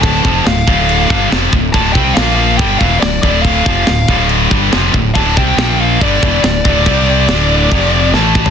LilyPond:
<<
  \new Staff \with { instrumentName = "Lead electric guitar" } { \time 4/4 \key d \minor \tempo 4 = 141 a''4 f''2 r4 | a''8 g''8 f''8 f''8 g''8 f''8 d''8 d''8 | f''2 r2 | a''8 g''4 f''8 d''2~ |
d''2. a''4 | }
  \new Staff \with { instrumentName = "Distorted electric guitar" } { \clef bass \time 4/4 \key d \minor <d, a, d>8 <f, c f>8 <d, a,>8 <d, a, d>4 <g, d g>8 <f, c f>8 <d, a,>8 | <d, a, d>8 <c g c'>8 <bes, f bes>4 <g, d g>8 <e, b, e>8 <d, a,>8 <d, a, d>8~ | <d, a, d>8 <f, c f>8 <d, a,>8 <d, a, d>4 <g, d g>8 <f, c f>8 <d, a,>8 | <d, a, d>8 <c g c'>8 <bes, f bes>4 <g, d g>8 <e, b, e>8 <d, a,>8 <d, a, d>8 |
<c g c'>4 <d, a, d>4 <f, c f>4 <e a>4 | }
  \new Staff \with { instrumentName = "Distorted electric guitar" } { \clef bass \time 4/4 \key d \minor <d, a, d>8 <f, c f>8 <d, a,>8 <d, a, d>4 <g, d g>8 <f, c f>8 <d, a,>8 | <d, a, d>8 <c g c'>8 <bes, f bes>4 <g, d g>8 <e, b, e>8 <d, a,>8 <d, a, d>8~ | <d, a, d>8 <f, c f>8 <d, a,>8 <d, a, d>4 <g, d g>8 <f, c f>8 <d, a,>8 | <d, a, d>8 <c g c'>8 <bes, f bes>4 <g, d g>8 <e, b, e>8 <d, a,>8 <d, a, d>8 |
<c g c'>4 <d, a, d>4 <f, c f>4 <a, e a>4 | }
  \new Staff \with { instrumentName = "Fingered electric bass" } { \clef bass \time 4/4 \key d \minor d,,8 f,,8 d,,8 d,,4 g,,8 f,,8 d,,8 | d,,8 c,8 bes,,4 g,,8 e,,8 d,,8 d,,8~ | d,,8 f,,8 d,,8 d,,4 g,,8 f,,8 d,,8 | d,,8 c,8 bes,,4 g,,8 e,,8 d,,8 d,,8 |
c,4 d,,4 f,,4 a,,4 | }
  \new DrumStaff \with { instrumentName = "Drums" } \drummode { \time 4/4 <cymc bd>8 bd8 <cymc sn>8 bd8 cymc8 bd8 <cymc sn>8 bd8 | <cymc bd>8 bd8 <cymc sn>4 <cymc bd>8 bd8 <cymc sn>8 bd8 | <cymc bd>8 bd8 <cymc sn>8 bd8 cymc8 bd8 <cymc sn>8 bd8 | <cymc bd>8 bd8 <cymc sn>4 <cymc bd>8 bd8 <cymc sn>8 bd8 |
<cymc bd>4 <cymc sn>4 <cymc bd>4 sn8 bd16 tomfh16 | }
>>